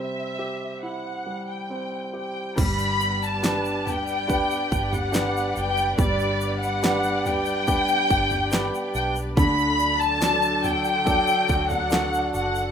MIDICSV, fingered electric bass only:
0, 0, Header, 1, 2, 480
1, 0, Start_track
1, 0, Key_signature, 1, "major"
1, 0, Tempo, 863309
1, 1432, Time_signature, 4, 2, 24, 8
1, 2384, Tempo, 847458
1, 7157, End_track
2, 0, Start_track
2, 0, Title_t, "Fingered electric bass"
2, 0, Program_c, 0, 33
2, 1435, Note_on_c, 0, 31, 92
2, 2606, Note_off_c, 0, 31, 0
2, 2629, Note_on_c, 0, 31, 88
2, 3085, Note_off_c, 0, 31, 0
2, 3111, Note_on_c, 0, 30, 94
2, 3331, Note_off_c, 0, 30, 0
2, 3346, Note_on_c, 0, 31, 107
2, 4523, Note_off_c, 0, 31, 0
2, 4548, Note_on_c, 0, 31, 89
2, 4882, Note_off_c, 0, 31, 0
2, 5023, Note_on_c, 0, 35, 94
2, 5246, Note_off_c, 0, 35, 0
2, 5264, Note_on_c, 0, 38, 118
2, 6443, Note_off_c, 0, 38, 0
2, 6466, Note_on_c, 0, 38, 91
2, 6925, Note_off_c, 0, 38, 0
2, 6948, Note_on_c, 0, 30, 93
2, 7157, Note_off_c, 0, 30, 0
2, 7157, End_track
0, 0, End_of_file